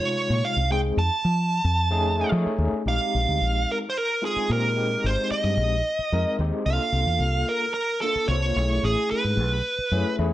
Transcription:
Already playing: tine electric piano C3 G#3 D#4 F4, lead electric guitar C#5
0.30 fingered electric bass A#2
0.45 lead electric guitar F5
0.56 fingered electric bass C2
0.70 tine electric piano G#3 C4 D#4 G#4, lead electric guitar G5
0.97 fingered electric bass F2, lead electric guitar A5
1.25 fingered electric bass F3
1.64 fingered electric bass F2
1.91 tine electric piano A3 C#4 D#4 G#4
2.17 tine electric piano A3 C#4 D#4 G#4
2.31 fingered electric bass F3, tine electric piano A3 C#4 D#4 G#4 G#5
2.46 muted fingered electric bass stroke
2.58 fingered electric bass D#2
2.73 muted fingered electric bass stroke
2.85 fingered electric bass A#1, tine electric piano G#3 C4 D#4 G4, lead electric guitar F5
3.15 fingered electric bass A#1
3.28 fingered electric bass D2
3.41 fingered electric bass A#1
3.72 lead electric guitar A#4
3.90 lead electric guitar C5
3.98 lead electric guitar A#4
4.22 tine electric piano G#3 C4 D#4 F4, lead electric guitar G#4
4.36 muted fingered electric bass stroke
4.50 fingered electric bass A#2, tine electric piano G#3 C4 D#4 G4, lead electric guitar A#4
4.76 tine electric piano G#3 C4 D#4 G4
5.04 fingered electric bass G#1, lead electric guitar C5
5.31 lead electric guitar D#5, muted fingered electric bass stroke
5.44 fingered electric bass G2
5.57 fingered electric bass A#1
5.99 muted fingered electric bass stroke
6.12 fingered electric bass F2, tine electric piano G#3 C4 D#4 A#4
6.39 fingered electric bass D#2, tine electric piano G#3 C4 D#4 G4
6.66 fingered electric bass C2, tine electric piano A#3 D4 F4 A4, lead electric guitar F5
6.92 fingered electric bass C2
7.06 fingered electric bass E2
7.20 fingered electric bass C2
7.49 lead electric guitar A#4
7.74 lead electric guitar A#4
8.01 tine electric piano A#3 D4 F4 A4, lead electric guitar A4
8.15 muted fingered electric bass stroke
8.28 fingered electric bass C2, tine electric piano A#3 D4 F4 C5, lead electric guitar C#5
8.56 fingered electric bass B1, tine electric piano A3 C#4 E4 G#4
8.83 fingered electric bass A1, lead electric guitar G#4
9.11 lead electric guitar B4, muted fingered electric bass stroke
9.24 fingered electric bass G#2
9.37 fingered electric bass B1
9.78 muted fingered electric bass stroke
9.92 fingered electric bass F#2, tine electric piano A3 C#4 E4 G#4 C#5
10.07 tine electric piano E5
10.19 fingered electric bass E2, tine electric piano A3 C#4 E4 G#4 G#5

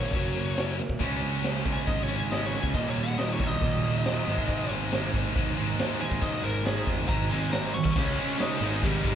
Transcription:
Already playing: picked electric bass D#1, distorted electric guitar F#2 C#3 F#3, steel-string acoustic guitar F#2 A#3 C#4, lead electric guitar C#5
0.12 picked electric bass F#1, distorted electric guitar F#2 C#3 F#3, steel-string acoustic guitar F#3, kick, open hi-hat
0.34 distorted electric guitar F#2 C#3 F#3, steel-string acoustic guitar A#3, open hi-hat
0.57 steel-string acoustic guitar F#3, snare, open hi-hat
0.79 steel-string acoustic guitar A#3, open hi-hat
0.89 picked electric bass D#1, kick
0.99 picked electric bass C#2, distorted electric guitar C#3 G#3 C#4, kick, open hi-hat
1.22 picked electric bass C#2, open hi-hat
1.44 snare, open hi-hat
1.65 picked electric bass C#2, distorted electric guitar C#3 G#3 C#4, kick, open hi-hat
1.73 lead electric guitar G#5
1.87 picked electric bass G#1, lead electric guitar D#5, kick, open hi-hat
2.03 lead electric guitar C#5
2.08 distorted electric guitar C#3 G#3 C#4, open hi-hat
2.16 lead electric guitar G#5
2.30 distorted electric guitar C#3 G#3 C#4, lead electric guitar D#5, snare, open hi-hat
2.46 lead electric guitar C#5
2.53 open hi-hat
2.60 picked electric bass C#2, lead electric guitar G#5, kick
2.74 picked electric bass D#1, distorted electric guitar D#2 A#2, lead electric guitar D#5, kick, open hi-hat
2.78 distorted electric guitar D#3
2.90 lead electric guitar C#5
2.96 picked electric bass D#1, open hi-hat
3.03 lead electric guitar F#5
3.18 lead electric guitar D#5, snare, open hi-hat
3.33 lead electric guitar C#5
3.40 picked electric bass C2, distorted electric guitar D#2 A#2 D#3, kick, open hi-hat
3.47 lead electric guitar D#5
3.61 picked electric bass D#1, kick, open hi-hat
3.83 distorted electric guitar D#2 A#2 D#3, open hi-hat
4.05 distorted electric guitar D#2 A#2 D#3, snare, open hi-hat
4.26 picked electric bass G#1, distorted electric guitar G#2 D#3 G#3, open hi-hat
4.38 kick
4.49 kick, open hi-hat
4.70 picked electric bass G#1, open hi-hat
4.92 distorted electric guitar G#2 D#3 G#3, snare, open hi-hat
5.14 picked electric bass G#1, kick, open hi-hat
5.34 picked electric bass D#2, distorted electric guitar G#2 D#3 G#3, kick, open hi-hat
5.57 distorted electric guitar G#2 D#3 G#3, open hi-hat
5.79 snare, open hi-hat
5.99 distorted electric guitar G#2 D#3 G#3, lead electric guitar G#5, open hi-hat
6.12 picked electric bass G#1, kick
6.22 picked electric bass D#2, lead electric guitar D#5, kick, open hi-hat
6.43 picked electric bass G#1, lead electric guitar A#4, open hi-hat
6.65 distorted electric guitar G#2 D#3 G#3, lead electric guitar G#4, snare, open hi-hat
6.87 picked electric bass F1, kick, open hi-hat
7.07 picked electric bass G#1, distorted electric guitar G#2 D#3, lead electric guitar A#5, kick, open hi-hat
7.12 distorted electric guitar G#3
7.30 distorted electric guitar D#3 G#3, lead electric guitar C4 C5 G#5, open hi-hat
7.34 distorted electric guitar G#2
7.52 lead electric guitar A#5, snare, open hi-hat
7.74 lead electric guitar C#6, open hi-hat
7.85 picked electric bass C2, kick
7.96 picked electric bass C#2, distorted electric guitar C#3 G#3 C#4, lead electric guitar C#4 C#5, kick, crash
8.17 distorted electric guitar C#3 G#3 C#4, ride
8.38 distorted electric guitar C#3 G#3 C#4, lead electric guitar D#4 D#5, snare, ride
8.60 picked electric bass G#1, distorted electric guitar G#2 D#3 G#3, ride
8.82 distorted electric guitar G#2 D#3 G#3, lead electric guitar G3 G4, kick, ride
9.04 picked electric bass G#1, distorted electric guitar G#2 D#3 G#3, kick, ride

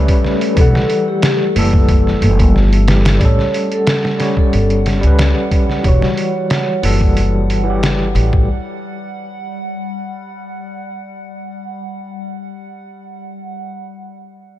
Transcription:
Already playing: tine electric piano G3 C#4 B4 C#5, ambient pad A3 A4
0.08 kick, open hi-hat
0.25 snare
0.41 open hi-hat
0.55 upright bass E1, tine electric piano E3 G3, vibraphone A4, kick, open hi-hat
0.61 tine electric piano F#5
0.75 snare
0.90 open hi-hat
1.08 vibraphone G4
1.22 snare, open hi-hat
1.56 upright bass F#1, tine electric piano E3 G3 A4, open hi-hat
1.73 kick
1.89 kick, open hi-hat
2.07 snare
2.22 upright bass F#1, open hi-hat
2.39 kick, open hi-hat
2.55 upright bass G1, snare
2.73 open hi-hat
2.88 tine electric piano E3 G3 G4, snare, open hi-hat
3.05 snare, open hi-hat
3.19 upright bass A1, tine electric piano G3 C#4, ambient pad G3 F#5, vibraphone C#5, kick, open hi-hat
3.25 tine electric piano A4
3.39 snare
3.54 open hi-hat
3.72 vibraphone A4, closed hi-hat
3.87 snare, open hi-hat
4.05 snare
4.19 tine electric piano G3 C#4 C#5, snare, open hi-hat
4.37 vibraphone A4, kick
4.53 upright bass G1, open hi-hat
4.70 closed hi-hat
4.86 snare, open hi-hat
5.01 upright bass C#2, tine electric piano G3 C#4, closed hi-hat
5.07 tine electric piano B4
5.19 snare, open hi-hat
5.51 kick, open hi-hat
5.70 snare
5.83 upright bass E1, tine electric piano E3 G3, vibraphone C#5, kick, open hi-hat
5.88 tine electric piano F#4
6.02 snare
6.17 open hi-hat
6.36 vibraphone C#5
6.50 snare, open hi-hat
6.82 upright bass F#1, tine electric piano E3 G3 A4, open hi-hat
7.01 kick
7.17 open hi-hat
7.49 upright bass G1, open hi-hat
7.64 tine electric piano E3 G3
7.70 tine electric piano G4
7.83 snare, open hi-hat
8.15 upright bass A1, open hi-hat
8.33 kick

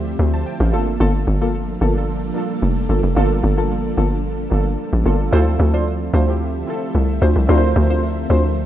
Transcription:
Already playing: log drum bass D2, ambient pad D3 F3 A3 C4 E5, synth keys C4 E4 F4 G4 A4
0.19 log drum bass D2
0.34 synth keys C5 A5
0.46 synth keys G5
0.60 log drum bass A1, synth keys A4 F5
0.72 log drum bass G1, ambient pad G3 A#3 D4 A4, synth keys A#3 D4 F4 A4, synth stab A#3 F4 A4
1.00 log drum bass G1, synth stab A#3 F4 A4
1.27 log drum bass G1
1.41 synth stab A#3 F4 A4
1.81 log drum bass G1, synth stab A#3 F4 A4
1.94 synth keys A#3 D4 F4 A4
2.34 synth keys A#3 D4 F4 A4
2.62 log drum bass F1
2.89 log drum bass G1, synth stab A#3 F4 A4
3.03 log drum bass F1
3.15 log drum bass G1, synth keys A#3 D4 F4 A4, synth stab A#3 F4 A4
3.44 log drum bass G1
3.57 synth stab A#3 F4 A4
3.97 log drum bass G1, synth stab A#3 F4 A4
4.50 log drum bass G1, synth keys A#3 D4 F4 A4
4.93 log drum bass A1
5.04 log drum bass G1, synth keys A#3 D4 F4 A4, synth stab A#3 F4 A4
5.31 log drum bass D2, ambient pad D3 F3 A3 C4 E5, synth keys C4 E4 F4 A4, synth stab D4 F4 C5
5.60 log drum bass D2
5.73 synth stab D4 F4 C5
6.14 log drum bass D2, synth stab D4 F4 C5
6.26 synth keys C4 E4 F4 G4
6.66 synth keys C4 E4 F4 A4
6.95 log drum bass C2
7.22 log drum bass D2, synth stab D4 F4 C5
7.36 log drum bass C2
7.47 log drum bass D2, synth keys C4 E4 F4 A#4, synth stab D4 F4 C5
7.58 synth keys C5
7.76 log drum bass D2
7.90 synth stab D4 F4 C5
8.30 log drum bass D2, synth stab D4 F4 C5

